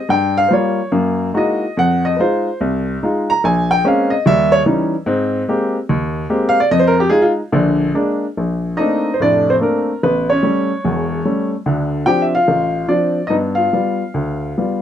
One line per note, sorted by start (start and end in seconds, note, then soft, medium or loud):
0.09 0.45 G2 medium
0.09 0.36 G5 medium
0.38 0.51 F5 loud
0.48 0.79 G3 medium
0.48 0.79 A#3 medium
0.48 0.79 F4 medium
0.48 0.51 C5 medium
0.53 0.91 C#5 medium
0.92 1.28 F#2 medium
0.92 1.28 A#3 medium
1.34 1.63 G#3 medium
1.34 1.63 A#3 soft
1.34 1.63 D#4 soft
1.34 1.64 E4 soft
1.34 1.64 F#4 medium
1.34 1.75 D#5 medium
1.77 2.13 F2 medium
1.77 2.04 F#5 medium
2.05 2.19 D#5 medium
2.16 2.47 G#3 medium
2.16 2.48 D#4 medium
2.16 2.48 F4 medium
2.16 2.19 B4 soft
2.21 2.58 C5 medium
2.61 2.96 C2 medium
3.03 3.31 G#3 medium
3.03 3.31 D#4 medium
3.03 3.31 F4 medium
3.30 3.43 A#5 loud
3.44 3.79 A#1 medium
3.44 3.70 G#5 medium
3.71 3.84 G5 loud
3.84 4.12 G#3 medium
3.84 4.12 A#3 medium
3.84 4.13 C4 medium
3.84 4.13 C#4 medium
3.84 4.12 F5 medium
4.10 4.25 D#5 medium
4.26 4.61 D#2 medium
4.26 4.61 G3 medium
4.26 4.52 E5 loud
4.52 4.60 C#5 loud
4.66 4.94 E3 medium
4.66 4.94 G3 medium
4.66 4.94 C#4 medium
4.66 4.94 D#4 medium
5.06 5.42 G#2 medium
5.06 5.42 C4 medium
5.48 5.76 G#3 medium
5.48 5.76 A#3 medium
5.48 5.76 C4 medium
5.48 5.76 G4 medium
5.89 6.24 D#2 medium
6.30 6.57 G#3 medium
6.30 6.57 A#3 medium
6.30 6.57 C4 medium
6.30 6.57 G4 medium
6.49 6.59 F5 loud
6.60 6.68 D5 medium
6.71 7.06 F2 medium
6.71 6.83 D#5 loud
6.80 6.94 C5 medium
6.87 6.99 A#4 loud
7.00 7.09 G4 medium
7.09 7.39 G#3 medium
7.09 7.39 D#4 medium
7.09 7.20 F4 medium
7.09 7.23 G#4 medium
7.22 7.31 F4 medium
7.52 7.89 A#1 medium
7.52 7.89 D3 medium
7.94 8.24 G#3 medium
7.94 8.24 A#3 medium
7.94 8.24 D4 medium
8.37 8.74 A#1 medium
8.77 9.08 A3 soft
8.77 9.08 A#3 soft
8.77 9.08 C4 soft
8.77 9.08 D4 medium
8.77 9.14 D#4 medium
8.77 9.18 D#5 medium
9.14 9.19 C5 medium
9.20 9.56 F1 medium
9.20 9.56 A2 medium
9.20 9.47 D4 medium
9.20 9.49 D5 medium
9.50 9.56 C4 medium
9.50 9.55 C5 medium
9.61 9.89 A3 soft
9.61 9.90 A#3 soft
9.61 9.90 C4 soft
9.61 9.90 D4 medium
9.61 10.01 A#4 medium
10.03 10.38 A1 medium
10.03 10.28 B3 medium
10.03 10.31 B4 medium
10.30 10.43 C#4 medium
10.30 11.48 C#5 medium
10.43 10.71 G3 medium
10.43 10.71 A3 soft
10.43 10.72 C#4 medium
10.85 11.20 E1 medium
10.85 11.20 E2 medium
11.25 11.53 G3 soft
11.25 11.53 A3 soft
11.25 11.53 C#4 soft
11.66 12.01 D2 medium
11.66 12.02 D3 medium
12.06 12.34 F3 medium
12.06 12.34 C4 soft
12.06 12.35 D4 medium
12.06 12.24 G4 medium
12.06 12.23 G5 loud
12.22 12.32 E5 medium
12.35 12.86 F4 medium
12.35 12.91 F5 medium
12.48 12.83 A1 medium
12.88 13.17 F3 soft
12.88 13.17 C4 soft
12.88 13.17 D4 medium
12.88 13.27 D5 medium
13.27 13.66 G2 medium
13.27 13.67 B3 medium
13.27 13.36 D#4 medium
13.27 13.34 D#5 medium
13.55 13.72 F4 medium
13.55 14.79 F5 medium
13.73 14.01 G3 medium
13.73 14.02 B3 soft
13.73 14.02 F4 medium
14.14 14.51 D2 medium
14.58 14.82 G3 soft
14.58 14.82 B3 soft
14.58 14.82 F4 soft